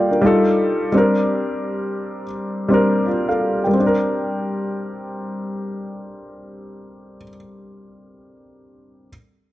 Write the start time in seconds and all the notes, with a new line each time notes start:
Already playing: G3 A#3 F4 A4 A#4 D5 F5 G5
0.11 D4 A#4
0.21 G3 D#4 F4
0.26 A4
0.92 G3 C4 D4
0.97 A#4
2.68 G3 C4 D4
2.74 A#4
3.06 F4 D5
3.29 A4 F5
3.64 G3 A#4 G5
3.73 C4
3.80 D4
3.86 A#4